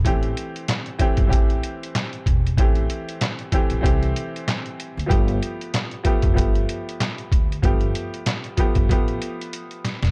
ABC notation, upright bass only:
X:1
M:4/4
L:1/16
Q:"Swing 16ths" 1/4=95
K:Am
V:1 name="Upright bass" clef=bass
A,,,2 z4 z G,,, A,,,2 z4 E,,,2 | A,,,2 z4 z A,,, C,,2 z4 z D,, | G,,,2 z4 z F,,, G,,,2 z4 D,,2 | G,,,2 z4 z G,,, A,,,2 z4 z E,,, |]